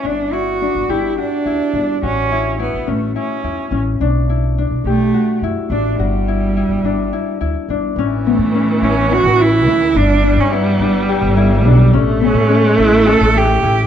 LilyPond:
<<
  \new Staff \with { instrumentName = "Harp" } { \time 7/8 \key a \mixolydian \tempo 4 = 106 d'8 e'8 d'8 g'8 fis'8 e'8 d'8 | fis'8 e'8 e'8 cis'8 e'8 e'8 cis'8 | d'8 e'8 d'8 g'8 fis'8 e'8 d'8 | fis'8 e'8 e'8 d'8 e'8 e'8 d'8 |
cis'8 b8 cis'8 e'8 cis'8 e'8 e'8 | d'8 d'8 e'8 d'8 g'8 e'8 d'8 | cis'8 b8 cis'8 e'8 cis'8 e'8 e'8 | }
  \new Staff \with { instrumentName = "Cello" } { \time 7/8 \key a \mixolydian d'8 fis'4 e'8 d'4. | cis'4 b8 a8 cis'4 r8 | r4. a4 r8 d'8 | g2~ g8 r4 |
r8 a4 cis'8 fis'8 e'4 | d'8. cis'16 b2 r8 | r8 cis'4 e'8 a'8 g'4 | }
  \new Staff \with { instrumentName = "Viola" } { \clef bass \time 7/8 \key a \mixolydian r2. r8 | r2. r8 | r2. r8 | r2. r8 |
e2.~ e8 | g2.~ g8 | a2.~ a8 | }
  \new Staff \with { instrumentName = "Upright bass" } { \clef bass \time 7/8 \key a \mixolydian g,,4~ g,,16 g,,16 g,,8 r8 d,16 r16 g,,8 | a,,4~ a,,16 a,,16 a,,8 r8 e,16 r16 a,,8 | b,,4~ b,,16 b,,16 b,,8 r8 fis,16 r16 a,,8 | g,,4~ g,,16 g,,16 g,,8 r8 d,16 r16 g,,8 |
a,,8. a,8. a,,8. a,,8. d,8 | g,,8. g,8. g,,8. g,,8. b,,8 | a,,8. a,8. a,,8. a,,8. a,,8 | }
>>